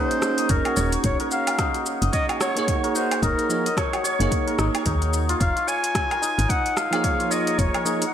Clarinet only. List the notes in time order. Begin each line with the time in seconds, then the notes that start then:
Already playing: C5
0.51 A#4
1.05 C#5
1.32 F5
2.14 D#5
2.41 C#5
2.96 C5
3.23 A#4
3.78 C#5
5.41 F5
5.68 G#5
6.50 F#5
6.77 F5
7.31 D#5
7.59 C#5
8.07 F#5